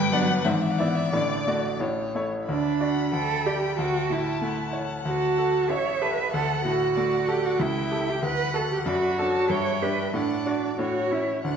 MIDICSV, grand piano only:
0, 0, Header, 1, 2, 480
1, 0, Start_track
1, 0, Key_signature, 2, "major"
1, 0, Tempo, 668151
1, 807, Time_signature, 2, 2, 24, 8
1, 2250, Tempo, 636943
1, 7050, Tempo, 650054
1, 8575, End_track
2, 0, Start_track
2, 0, Title_t, "Grand piano"
2, 0, Program_c, 0, 0
2, 0, Note_on_c, 0, 31, 74
2, 0, Note_on_c, 0, 43, 79
2, 2, Control_c, 0, 64, 127
2, 83, Note_off_c, 0, 31, 0
2, 83, Note_off_c, 0, 43, 0
2, 90, Note_on_c, 0, 59, 55
2, 92, Note_on_c, 0, 62, 53
2, 97, Note_on_c, 0, 74, 59
2, 300, Note_off_c, 0, 59, 0
2, 301, Note_off_c, 0, 62, 0
2, 304, Note_off_c, 0, 74, 0
2, 326, Note_on_c, 0, 44, 67
2, 327, Note_on_c, 0, 32, 60
2, 337, Control_c, 0, 64, 0
2, 457, Control_c, 0, 64, 127
2, 557, Note_off_c, 0, 44, 0
2, 558, Note_off_c, 0, 32, 0
2, 571, Note_on_c, 0, 59, 46
2, 574, Note_on_c, 0, 64, 52
2, 578, Note_on_c, 0, 74, 54
2, 787, Note_off_c, 0, 59, 0
2, 789, Note_off_c, 0, 64, 0
2, 791, Note_off_c, 0, 74, 0
2, 812, Note_on_c, 0, 33, 59
2, 813, Note_on_c, 0, 45, 65
2, 822, Control_c, 0, 64, 0
2, 934, Control_c, 0, 64, 127
2, 1047, Note_off_c, 0, 33, 0
2, 1047, Note_off_c, 0, 45, 0
2, 1056, Note_on_c, 0, 57, 44
2, 1062, Note_on_c, 0, 66, 45
2, 1062, Note_on_c, 0, 74, 51
2, 1273, Note_off_c, 0, 57, 0
2, 1276, Note_off_c, 0, 66, 0
2, 1276, Note_off_c, 0, 74, 0
2, 1295, Note_on_c, 0, 45, 57
2, 1296, Note_on_c, 0, 33, 53
2, 1310, Control_c, 0, 64, 0
2, 1453, Control_c, 0, 64, 127
2, 1531, Note_off_c, 0, 45, 0
2, 1532, Note_off_c, 0, 33, 0
2, 1543, Note_on_c, 0, 57, 45
2, 1546, Note_on_c, 0, 64, 45
2, 1552, Note_on_c, 0, 73, 53
2, 1757, Note_off_c, 0, 57, 0
2, 1759, Note_off_c, 0, 64, 0
2, 1762, Note_off_c, 0, 73, 0
2, 1785, Note_on_c, 0, 38, 64
2, 1793, Control_c, 0, 64, 0
2, 1919, Control_c, 0, 64, 127
2, 2016, Note_on_c, 0, 66, 42
2, 2016, Note_on_c, 0, 74, 49
2, 2227, Note_off_c, 0, 66, 0
2, 2227, Note_off_c, 0, 74, 0
2, 2238, Note_off_c, 0, 38, 0
2, 2249, Note_on_c, 0, 38, 58
2, 2263, Control_c, 0, 64, 0
2, 2385, Control_c, 0, 64, 127
2, 2500, Note_on_c, 0, 67, 50
2, 2500, Note_on_c, 0, 74, 52
2, 2715, Note_off_c, 0, 67, 0
2, 2715, Note_off_c, 0, 74, 0
2, 2721, Note_off_c, 0, 38, 0
2, 2741, Note_on_c, 0, 38, 63
2, 2749, Control_c, 0, 64, 0
2, 2895, Control_c, 0, 64, 127
2, 2981, Note_on_c, 0, 45, 41
2, 3217, Note_on_c, 0, 57, 47
2, 3365, Note_off_c, 0, 45, 0
2, 3454, Note_on_c, 0, 73, 49
2, 3602, Note_off_c, 0, 57, 0
2, 3674, Note_off_c, 0, 38, 0
2, 3697, Note_off_c, 0, 73, 0
2, 3698, Note_on_c, 0, 38, 58
2, 3715, Control_c, 0, 64, 0
2, 3815, Control_c, 0, 64, 127
2, 3945, Note_on_c, 0, 66, 45
2, 3948, Note_on_c, 0, 69, 50
2, 4160, Note_off_c, 0, 66, 0
2, 4161, Note_off_c, 0, 69, 0
2, 4166, Note_off_c, 0, 38, 0
2, 4181, Note_on_c, 0, 33, 53
2, 4196, Control_c, 0, 64, 0
2, 4301, Control_c, 0, 64, 127
2, 4423, Note_on_c, 0, 67, 43
2, 4427, Note_on_c, 0, 69, 50
2, 4639, Note_off_c, 0, 67, 0
2, 4641, Note_off_c, 0, 69, 0
2, 4648, Note_off_c, 0, 33, 0
2, 4665, Note_on_c, 0, 38, 66
2, 4677, Control_c, 0, 64, 0
2, 4788, Control_c, 0, 64, 127
2, 4901, Note_on_c, 0, 45, 50
2, 5142, Note_on_c, 0, 57, 47
2, 5283, Note_off_c, 0, 45, 0
2, 5378, Note_on_c, 0, 69, 55
2, 5523, Note_off_c, 0, 57, 0
2, 5590, Note_off_c, 0, 38, 0
2, 5612, Note_on_c, 0, 37, 66
2, 5617, Note_off_c, 0, 69, 0
2, 5632, Control_c, 0, 64, 0
2, 5767, Control_c, 0, 64, 127
2, 5854, Note_on_c, 0, 67, 46
2, 5859, Note_on_c, 0, 69, 48
2, 6067, Note_off_c, 0, 67, 0
2, 6070, Note_off_c, 0, 69, 0
2, 6074, Note_off_c, 0, 37, 0
2, 6087, Note_on_c, 0, 38, 58
2, 6106, Control_c, 0, 64, 0
2, 6215, Control_c, 0, 64, 127
2, 6322, Note_on_c, 0, 66, 52
2, 6324, Note_on_c, 0, 69, 56
2, 6540, Note_off_c, 0, 66, 0
2, 6541, Note_off_c, 0, 69, 0
2, 6551, Note_off_c, 0, 38, 0
2, 6563, Note_on_c, 0, 42, 67
2, 6581, Control_c, 0, 64, 0
2, 6716, Control_c, 0, 64, 127
2, 6810, Note_on_c, 0, 62, 51
2, 6813, Note_on_c, 0, 69, 56
2, 7027, Note_off_c, 0, 62, 0
2, 7028, Note_off_c, 0, 69, 0
2, 7033, Note_off_c, 0, 42, 0
2, 7046, Note_on_c, 0, 43, 62
2, 7064, Control_c, 0, 64, 0
2, 7178, Control_c, 0, 64, 127
2, 7288, Note_on_c, 0, 62, 49
2, 7288, Note_on_c, 0, 67, 53
2, 7500, Note_off_c, 0, 62, 0
2, 7501, Note_off_c, 0, 67, 0
2, 7507, Note_off_c, 0, 43, 0
2, 7519, Note_on_c, 0, 45, 66
2, 7538, Control_c, 0, 64, 0
2, 7644, Control_c, 0, 64, 127
2, 7758, Note_on_c, 0, 62, 44
2, 7763, Note_on_c, 0, 66, 47
2, 7973, Note_off_c, 0, 62, 0
2, 7976, Note_off_c, 0, 66, 0
2, 7982, Note_off_c, 0, 45, 0
2, 8001, Note_on_c, 0, 45, 59
2, 8012, Control_c, 0, 64, 0
2, 8157, Control_c, 0, 64, 127
2, 8239, Note_on_c, 0, 61, 40
2, 8239, Note_on_c, 0, 64, 42
2, 8461, Note_off_c, 0, 61, 0
2, 8461, Note_off_c, 0, 64, 0
2, 8473, Note_off_c, 0, 45, 0
2, 8484, Note_on_c, 0, 38, 56
2, 8501, Control_c, 0, 64, 0
2, 8575, Note_off_c, 0, 38, 0
2, 8575, End_track
0, 0, End_of_file